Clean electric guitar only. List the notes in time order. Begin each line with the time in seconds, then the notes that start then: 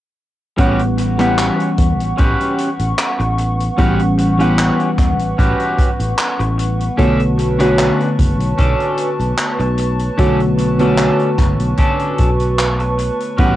0.58 C#4 F#4 G4 B4
0.98 muted clean electric guitar stroke
1.19 C#4 F#4 G4 B4
2.18 C#4 F#4 G4 B4
3.19 muted clean electric guitar stroke
3.38 muted clean electric guitar stroke
3.78 C#4 F#4 G4 B4
4.18 muted clean electric guitar stroke
4.39 C#4 F#4 G4 B4
5.38 C#4 F#4 G4 B4
6.39 muted clean electric guitar stroke
6.58 muted clean electric guitar stroke
6.97 C#4 D4 A4
7.38 muted clean electric guitar stroke
7.59 C#4 D4 B4
8.58 C#4 D4 A4
9.59 muted clean electric guitar stroke
9.78 muted clean electric guitar stroke
10.18 C#4 D4 A4
10.58 muted clean electric guitar stroke
10.79 C#4 D4 A4
11.78 C#4 D4 A4
12.79 muted clean electric guitar stroke
12.98 muted clean electric guitar stroke
13.38 C#4 F#4 G4 B4